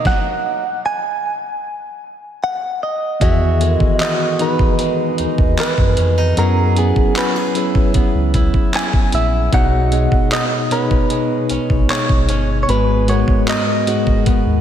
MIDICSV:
0, 0, Header, 1, 6, 480
1, 0, Start_track
1, 0, Tempo, 789474
1, 32, Time_signature, 4, 2, 24, 8
1, 8882, End_track
2, 0, Start_track
2, 0, Title_t, "Clean electric guitar"
2, 0, Program_c, 0, 27
2, 41, Note_on_c, 0, 78, 110
2, 492, Note_off_c, 0, 78, 0
2, 521, Note_on_c, 0, 80, 104
2, 1481, Note_on_c, 0, 78, 103
2, 1692, Note_off_c, 0, 80, 0
2, 1700, Note_off_c, 0, 78, 0
2, 1721, Note_on_c, 0, 75, 98
2, 1956, Note_off_c, 0, 75, 0
2, 1958, Note_on_c, 0, 76, 111
2, 2299, Note_off_c, 0, 76, 0
2, 2299, Note_on_c, 0, 75, 111
2, 2440, Note_off_c, 0, 75, 0
2, 2440, Note_on_c, 0, 75, 103
2, 2683, Note_off_c, 0, 75, 0
2, 2685, Note_on_c, 0, 71, 96
2, 3398, Note_off_c, 0, 71, 0
2, 3406, Note_on_c, 0, 71, 89
2, 3855, Note_off_c, 0, 71, 0
2, 3882, Note_on_c, 0, 70, 98
2, 4123, Note_on_c, 0, 68, 78
2, 4124, Note_off_c, 0, 70, 0
2, 4341, Note_off_c, 0, 68, 0
2, 4363, Note_on_c, 0, 71, 84
2, 4813, Note_off_c, 0, 71, 0
2, 5325, Note_on_c, 0, 80, 106
2, 5560, Note_off_c, 0, 80, 0
2, 5562, Note_on_c, 0, 76, 98
2, 5799, Note_off_c, 0, 76, 0
2, 5802, Note_on_c, 0, 78, 114
2, 6276, Note_off_c, 0, 78, 0
2, 6279, Note_on_c, 0, 75, 95
2, 6343, Note_off_c, 0, 75, 0
2, 6520, Note_on_c, 0, 71, 92
2, 7238, Note_on_c, 0, 73, 91
2, 7258, Note_off_c, 0, 71, 0
2, 7648, Note_off_c, 0, 73, 0
2, 7679, Note_on_c, 0, 73, 67
2, 7717, Note_off_c, 0, 73, 0
2, 7720, Note_on_c, 0, 71, 98
2, 7961, Note_on_c, 0, 73, 82
2, 7963, Note_off_c, 0, 71, 0
2, 8202, Note_off_c, 0, 73, 0
2, 8204, Note_on_c, 0, 75, 86
2, 8654, Note_off_c, 0, 75, 0
2, 8882, End_track
3, 0, Start_track
3, 0, Title_t, "Tine electric piano"
3, 0, Program_c, 1, 4
3, 0, Control_c, 1, 64, 127
3, 41, Control_c, 1, 64, 0
3, 1944, Note_on_c, 1, 52, 72
3, 1947, Note_on_c, 1, 59, 66
3, 1949, Note_on_c, 1, 51, 68
3, 1954, Note_on_c, 1, 66, 66
3, 1957, Note_on_c, 1, 68, 81
3, 2059, Control_c, 1, 64, 127
3, 2172, Note_off_c, 1, 52, 0
3, 2174, Note_off_c, 1, 59, 0
3, 2175, Note_off_c, 1, 51, 0
3, 2177, Note_off_c, 1, 66, 0
3, 2179, Note_off_c, 1, 68, 0
3, 2187, Note_on_c, 1, 52, 72
3, 2190, Note_on_c, 1, 59, 64
3, 2194, Note_on_c, 1, 51, 67
3, 2198, Note_on_c, 1, 66, 66
3, 2202, Note_on_c, 1, 69, 62
3, 2237, Note_off_c, 1, 69, 0
3, 2240, Note_on_c, 1, 70, 75
3, 2638, Note_off_c, 1, 52, 0
3, 2639, Note_off_c, 1, 59, 0
3, 2642, Note_off_c, 1, 51, 0
3, 2643, Note_off_c, 1, 66, 0
3, 2665, Note_off_c, 1, 70, 0
3, 2668, Note_on_c, 1, 52, 74
3, 2670, Note_on_c, 1, 59, 69
3, 2674, Note_on_c, 1, 63, 71
3, 2678, Note_on_c, 1, 66, 69
3, 2681, Note_on_c, 1, 68, 84
3, 3566, Note_off_c, 1, 52, 0
3, 3568, Note_off_c, 1, 59, 0
3, 3570, Note_off_c, 1, 63, 0
3, 3572, Note_off_c, 1, 66, 0
3, 3573, Note_off_c, 1, 68, 0
3, 3870, Note_on_c, 1, 54, 77
3, 3874, Note_on_c, 1, 61, 69
3, 3877, Note_on_c, 1, 64, 69
3, 3881, Control_c, 1, 64, 0
3, 3881, Note_on_c, 1, 68, 69
3, 3884, Note_on_c, 1, 59, 82
3, 4001, Control_c, 1, 64, 127
3, 4096, Note_off_c, 1, 54, 0
3, 4097, Note_off_c, 1, 61, 0
3, 4099, Note_off_c, 1, 64, 0
3, 4101, Note_off_c, 1, 68, 0
3, 4103, Note_off_c, 1, 59, 0
3, 4109, Note_on_c, 1, 54, 75
3, 4114, Note_on_c, 1, 61, 67
3, 4116, Note_on_c, 1, 64, 67
3, 4121, Note_on_c, 1, 68, 65
3, 4125, Note_on_c, 1, 71, 78
3, 4559, Note_off_c, 1, 54, 0
3, 4561, Note_off_c, 1, 61, 0
3, 4562, Note_off_c, 1, 64, 0
3, 4565, Note_off_c, 1, 68, 0
3, 4567, Note_off_c, 1, 71, 0
3, 4587, Note_on_c, 1, 54, 77
3, 4593, Note_on_c, 1, 61, 70
3, 4597, Note_on_c, 1, 64, 71
3, 4600, Note_on_c, 1, 68, 73
3, 4603, Note_on_c, 1, 73, 82
3, 5486, Note_off_c, 1, 54, 0
3, 5489, Note_off_c, 1, 61, 0
3, 5491, Note_off_c, 1, 64, 0
3, 5492, Note_off_c, 1, 68, 0
3, 5494, Note_off_c, 1, 73, 0
3, 5788, Note_on_c, 1, 47, 75
3, 5791, Note_on_c, 1, 59, 69
3, 5793, Note_on_c, 1, 63, 73
3, 5798, Note_on_c, 1, 68, 66
3, 5801, Control_c, 1, 64, 0
3, 5801, Note_on_c, 1, 73, 80
3, 5906, Control_c, 1, 64, 127
3, 6014, Note_off_c, 1, 47, 0
3, 6016, Note_off_c, 1, 59, 0
3, 6017, Note_off_c, 1, 63, 0
3, 6019, Note_off_c, 1, 68, 0
3, 6021, Note_off_c, 1, 73, 0
3, 6026, Note_on_c, 1, 47, 73
3, 6029, Note_on_c, 1, 59, 70
3, 6033, Note_on_c, 1, 63, 66
3, 6036, Note_on_c, 1, 68, 68
3, 6039, Note_on_c, 1, 75, 77
3, 6478, Note_off_c, 1, 47, 0
3, 6479, Note_off_c, 1, 59, 0
3, 6481, Note_off_c, 1, 63, 0
3, 6483, Note_off_c, 1, 68, 0
3, 6484, Note_off_c, 1, 75, 0
3, 6507, Note_on_c, 1, 47, 76
3, 6511, Note_on_c, 1, 59, 72
3, 6515, Note_on_c, 1, 63, 70
3, 6517, Note_on_c, 1, 68, 70
3, 6521, Note_on_c, 1, 73, 88
3, 7406, Note_off_c, 1, 47, 0
3, 7408, Note_off_c, 1, 59, 0
3, 7410, Note_off_c, 1, 63, 0
3, 7411, Note_off_c, 1, 68, 0
3, 7413, Note_off_c, 1, 73, 0
3, 7706, Note_on_c, 1, 44, 75
3, 7710, Note_on_c, 1, 56, 67
3, 7713, Note_on_c, 1, 59, 69
3, 7718, Note_on_c, 1, 66, 64
3, 7721, Control_c, 1, 64, 0
3, 7721, Note_on_c, 1, 71, 86
3, 7839, Control_c, 1, 64, 127
3, 7933, Note_off_c, 1, 44, 0
3, 7935, Note_off_c, 1, 56, 0
3, 7937, Note_off_c, 1, 59, 0
3, 7939, Note_off_c, 1, 66, 0
3, 7941, Note_off_c, 1, 71, 0
3, 7946, Note_on_c, 1, 44, 76
3, 7950, Note_on_c, 1, 56, 68
3, 7952, Note_on_c, 1, 59, 65
3, 7956, Note_on_c, 1, 66, 63
3, 7959, Note_on_c, 1, 70, 81
3, 8397, Note_off_c, 1, 44, 0
3, 8399, Note_off_c, 1, 56, 0
3, 8400, Note_off_c, 1, 59, 0
3, 8402, Note_off_c, 1, 66, 0
3, 8404, Note_off_c, 1, 70, 0
3, 8427, Note_on_c, 1, 44, 76
3, 8430, Note_on_c, 1, 56, 69
3, 8434, Note_on_c, 1, 59, 73
3, 8438, Note_on_c, 1, 66, 70
3, 8441, Note_on_c, 1, 68, 79
3, 8882, Note_off_c, 1, 44, 0
3, 8882, Note_off_c, 1, 56, 0
3, 8882, Note_off_c, 1, 59, 0
3, 8882, Note_off_c, 1, 66, 0
3, 8882, Note_off_c, 1, 68, 0
3, 8882, End_track
4, 0, Start_track
4, 0, Title_t, "Steel-string acoustic guitar"
4, 0, Program_c, 2, 25
4, 0, Note_on_c, 2, 47, 86
4, 0, Note_on_c, 2, 54, 57
4, 0, Note_on_c, 2, 58, 61
4, 0, Note_on_c, 2, 63, 67
4, 80, Note_off_c, 2, 47, 0
4, 384, Note_off_c, 2, 54, 0
4, 384, Note_off_c, 2, 58, 0
4, 384, Note_off_c, 2, 63, 0
4, 1953, Note_on_c, 2, 52, 82
4, 1956, Note_on_c, 2, 66, 74
4, 2194, Note_on_c, 2, 56, 64
4, 2433, Note_off_c, 2, 66, 0
4, 2435, Note_on_c, 2, 66, 65
4, 2675, Note_on_c, 2, 63, 62
4, 2913, Note_off_c, 2, 56, 0
4, 2915, Note_on_c, 2, 56, 69
4, 3147, Note_off_c, 2, 63, 0
4, 3154, Note_on_c, 2, 63, 62
4, 3392, Note_off_c, 2, 56, 0
4, 3394, Note_on_c, 2, 56, 60
4, 3631, Note_off_c, 2, 63, 0
4, 3634, Note_on_c, 2, 61, 62
4, 3756, Note_off_c, 2, 61, 0
4, 3756, Note_on_c, 2, 63, 54
4, 3871, Note_off_c, 2, 52, 0
4, 3873, Note_on_c, 2, 54, 87
4, 3875, Note_off_c, 2, 66, 0
4, 3877, Note_on_c, 2, 68, 74
4, 3922, Note_off_c, 2, 63, 0
4, 4113, Note_off_c, 2, 56, 0
4, 4116, Note_on_c, 2, 59, 67
4, 4352, Note_off_c, 2, 68, 0
4, 4354, Note_on_c, 2, 66, 70
4, 4474, Note_off_c, 2, 66, 0
4, 4474, Note_on_c, 2, 68, 64
4, 4594, Note_on_c, 2, 64, 62
4, 4830, Note_off_c, 2, 59, 0
4, 4833, Note_on_c, 2, 59, 67
4, 5067, Note_off_c, 2, 64, 0
4, 5075, Note_on_c, 2, 64, 64
4, 5310, Note_off_c, 2, 59, 0
4, 5312, Note_on_c, 2, 59, 62
4, 5545, Note_off_c, 2, 64, 0
4, 5553, Note_on_c, 2, 64, 66
4, 5792, Note_off_c, 2, 64, 0
4, 5793, Note_on_c, 2, 47, 90
4, 5797, Note_on_c, 2, 63, 78
4, 5841, Note_off_c, 2, 68, 0
4, 6001, Note_off_c, 2, 54, 0
4, 6034, Note_on_c, 2, 56, 66
4, 6270, Note_off_c, 2, 63, 0
4, 6273, Note_on_c, 2, 63, 66
4, 6511, Note_off_c, 2, 59, 0
4, 6513, Note_on_c, 2, 61, 64
4, 6750, Note_off_c, 2, 56, 0
4, 6753, Note_on_c, 2, 56, 69
4, 6986, Note_off_c, 2, 61, 0
4, 6993, Note_on_c, 2, 61, 63
4, 7231, Note_off_c, 2, 56, 0
4, 7234, Note_on_c, 2, 56, 61
4, 7467, Note_off_c, 2, 61, 0
4, 7474, Note_on_c, 2, 61, 66
4, 7712, Note_off_c, 2, 56, 0
4, 7713, Note_off_c, 2, 47, 0
4, 7715, Note_on_c, 2, 56, 81
4, 7761, Note_off_c, 2, 61, 0
4, 7954, Note_on_c, 2, 59, 65
4, 8194, Note_on_c, 2, 70, 66
4, 8401, Note_off_c, 2, 63, 0
4, 8433, Note_on_c, 2, 66, 61
4, 8672, Note_off_c, 2, 59, 0
4, 8674, Note_on_c, 2, 59, 66
4, 8882, Note_off_c, 2, 56, 0
4, 8882, Note_off_c, 2, 59, 0
4, 8882, Note_off_c, 2, 66, 0
4, 8882, Note_off_c, 2, 70, 0
4, 8882, End_track
5, 0, Start_track
5, 0, Title_t, "Analog synth bass"
5, 0, Program_c, 3, 38
5, 1953, Note_on_c, 3, 40, 109
5, 2288, Note_off_c, 3, 40, 0
5, 2313, Note_on_c, 3, 39, 46
5, 2361, Note_off_c, 3, 39, 0
5, 3156, Note_on_c, 3, 39, 48
5, 3203, Note_off_c, 3, 39, 0
5, 3274, Note_on_c, 3, 39, 90
5, 3383, Note_off_c, 3, 39, 0
5, 3515, Note_on_c, 3, 42, 99
5, 3623, Note_off_c, 3, 42, 0
5, 3636, Note_on_c, 3, 41, 102
5, 3853, Note_off_c, 3, 41, 0
5, 3876, Note_on_c, 3, 42, 106
5, 4210, Note_off_c, 3, 42, 0
5, 4234, Note_on_c, 3, 37, 50
5, 4281, Note_off_c, 3, 37, 0
5, 4833, Note_on_c, 3, 37, 50
5, 4880, Note_off_c, 3, 37, 0
5, 4954, Note_on_c, 3, 37, 87
5, 5171, Note_off_c, 3, 37, 0
5, 5553, Note_on_c, 3, 34, 97
5, 5771, Note_off_c, 3, 34, 0
5, 5793, Note_on_c, 3, 35, 120
5, 6128, Note_off_c, 3, 35, 0
5, 6152, Note_on_c, 3, 34, 47
5, 6200, Note_off_c, 3, 34, 0
5, 6994, Note_on_c, 3, 34, 50
5, 7041, Note_off_c, 3, 34, 0
5, 7115, Note_on_c, 3, 34, 102
5, 7223, Note_off_c, 3, 34, 0
5, 7354, Note_on_c, 3, 35, 98
5, 7463, Note_off_c, 3, 35, 0
5, 7474, Note_on_c, 3, 31, 96
5, 7691, Note_off_c, 3, 31, 0
5, 7713, Note_on_c, 3, 32, 114
5, 8048, Note_off_c, 3, 32, 0
5, 8074, Note_on_c, 3, 39, 49
5, 8122, Note_off_c, 3, 39, 0
5, 8675, Note_on_c, 3, 39, 50
5, 8722, Note_off_c, 3, 39, 0
5, 8795, Note_on_c, 3, 39, 87
5, 8882, Note_off_c, 3, 39, 0
5, 8882, End_track
6, 0, Start_track
6, 0, Title_t, "Drums"
6, 31, Note_on_c, 9, 36, 105
6, 33, Note_on_c, 9, 38, 85
6, 92, Note_off_c, 9, 36, 0
6, 94, Note_off_c, 9, 38, 0
6, 1953, Note_on_c, 9, 36, 106
6, 1954, Note_on_c, 9, 42, 71
6, 2013, Note_off_c, 9, 36, 0
6, 2014, Note_off_c, 9, 42, 0
6, 2194, Note_on_c, 9, 42, 64
6, 2255, Note_off_c, 9, 42, 0
6, 2312, Note_on_c, 9, 36, 87
6, 2373, Note_off_c, 9, 36, 0
6, 2432, Note_on_c, 9, 42, 70
6, 2434, Note_on_c, 9, 39, 117
6, 2492, Note_off_c, 9, 42, 0
6, 2494, Note_off_c, 9, 39, 0
6, 2671, Note_on_c, 9, 42, 70
6, 2732, Note_off_c, 9, 42, 0
6, 2793, Note_on_c, 9, 36, 97
6, 2854, Note_off_c, 9, 36, 0
6, 2911, Note_on_c, 9, 42, 77
6, 2972, Note_off_c, 9, 42, 0
6, 3151, Note_on_c, 9, 42, 68
6, 3212, Note_off_c, 9, 42, 0
6, 3273, Note_on_c, 9, 36, 92
6, 3334, Note_off_c, 9, 36, 0
6, 3396, Note_on_c, 9, 39, 118
6, 3396, Note_on_c, 9, 42, 63
6, 3457, Note_off_c, 9, 39, 0
6, 3457, Note_off_c, 9, 42, 0
6, 3513, Note_on_c, 9, 36, 96
6, 3574, Note_off_c, 9, 36, 0
6, 3629, Note_on_c, 9, 42, 66
6, 3690, Note_off_c, 9, 42, 0
6, 3874, Note_on_c, 9, 42, 74
6, 3935, Note_off_c, 9, 42, 0
6, 4113, Note_on_c, 9, 42, 65
6, 4174, Note_off_c, 9, 42, 0
6, 4233, Note_on_c, 9, 36, 92
6, 4294, Note_off_c, 9, 36, 0
6, 4352, Note_on_c, 9, 42, 71
6, 4354, Note_on_c, 9, 39, 115
6, 4413, Note_off_c, 9, 42, 0
6, 4415, Note_off_c, 9, 39, 0
6, 4591, Note_on_c, 9, 42, 74
6, 4652, Note_off_c, 9, 42, 0
6, 4712, Note_on_c, 9, 36, 103
6, 4773, Note_off_c, 9, 36, 0
6, 4829, Note_on_c, 9, 42, 76
6, 4832, Note_on_c, 9, 36, 96
6, 4890, Note_off_c, 9, 42, 0
6, 4893, Note_off_c, 9, 36, 0
6, 5070, Note_on_c, 9, 42, 69
6, 5072, Note_on_c, 9, 36, 82
6, 5131, Note_off_c, 9, 42, 0
6, 5133, Note_off_c, 9, 36, 0
6, 5192, Note_on_c, 9, 36, 92
6, 5253, Note_off_c, 9, 36, 0
6, 5315, Note_on_c, 9, 39, 110
6, 5315, Note_on_c, 9, 42, 62
6, 5376, Note_off_c, 9, 39, 0
6, 5376, Note_off_c, 9, 42, 0
6, 5432, Note_on_c, 9, 36, 96
6, 5493, Note_off_c, 9, 36, 0
6, 5548, Note_on_c, 9, 42, 72
6, 5609, Note_off_c, 9, 42, 0
6, 5792, Note_on_c, 9, 36, 120
6, 5792, Note_on_c, 9, 42, 76
6, 5852, Note_off_c, 9, 42, 0
6, 5853, Note_off_c, 9, 36, 0
6, 6031, Note_on_c, 9, 42, 61
6, 6091, Note_off_c, 9, 42, 0
6, 6152, Note_on_c, 9, 36, 97
6, 6213, Note_off_c, 9, 36, 0
6, 6272, Note_on_c, 9, 42, 68
6, 6274, Note_on_c, 9, 39, 113
6, 6333, Note_off_c, 9, 42, 0
6, 6335, Note_off_c, 9, 39, 0
6, 6513, Note_on_c, 9, 42, 72
6, 6574, Note_off_c, 9, 42, 0
6, 6633, Note_on_c, 9, 36, 94
6, 6694, Note_off_c, 9, 36, 0
6, 6750, Note_on_c, 9, 42, 77
6, 6810, Note_off_c, 9, 42, 0
6, 6989, Note_on_c, 9, 42, 68
6, 7050, Note_off_c, 9, 42, 0
6, 7113, Note_on_c, 9, 36, 88
6, 7174, Note_off_c, 9, 36, 0
6, 7237, Note_on_c, 9, 39, 121
6, 7237, Note_on_c, 9, 42, 57
6, 7297, Note_off_c, 9, 42, 0
6, 7298, Note_off_c, 9, 39, 0
6, 7353, Note_on_c, 9, 36, 94
6, 7414, Note_off_c, 9, 36, 0
6, 7470, Note_on_c, 9, 42, 73
6, 7531, Note_off_c, 9, 42, 0
6, 7714, Note_on_c, 9, 42, 70
6, 7775, Note_off_c, 9, 42, 0
6, 7953, Note_on_c, 9, 42, 62
6, 8014, Note_off_c, 9, 42, 0
6, 8073, Note_on_c, 9, 36, 95
6, 8134, Note_off_c, 9, 36, 0
6, 8193, Note_on_c, 9, 42, 71
6, 8195, Note_on_c, 9, 39, 117
6, 8254, Note_off_c, 9, 42, 0
6, 8256, Note_off_c, 9, 39, 0
6, 8435, Note_on_c, 9, 42, 74
6, 8496, Note_off_c, 9, 42, 0
6, 8554, Note_on_c, 9, 36, 98
6, 8615, Note_off_c, 9, 36, 0
6, 8671, Note_on_c, 9, 42, 73
6, 8674, Note_on_c, 9, 36, 98
6, 8732, Note_off_c, 9, 42, 0
6, 8735, Note_off_c, 9, 36, 0
6, 8882, End_track
0, 0, End_of_file